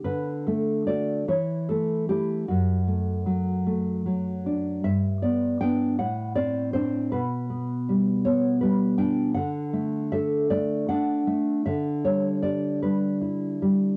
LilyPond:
\new Staff \with { instrumentName = "Nylon-string guitar" } { \time 6/8 \key d \major \tempo 4. = 52 << { b'8 a'8 d''8 cis''8 a'8 g'8 | fis'2~ fis'8 r8 | e''8 d''8 g''8 fis''8 d''8 c''8 | b'4. cis''8 b'8 g''8 |
fis''4 e''8 d''8 fis''4 | e''8 cis''8 d''8 b'8 r4 | } \\ { d8 a8 <a fis'>8 e8 a8 <a e'>8 | fis,8 a8 fis8 a8 fis8 d'8 | g,8 b8 <b d'>8 a,8 c'8 <c' d'>8 | b,8 b8 g8 b8 g8 d'8 |
d8 a8 a'8 a8 d'8 a8 | d8 g8 g'8 g8 e'8 g8 | } >> }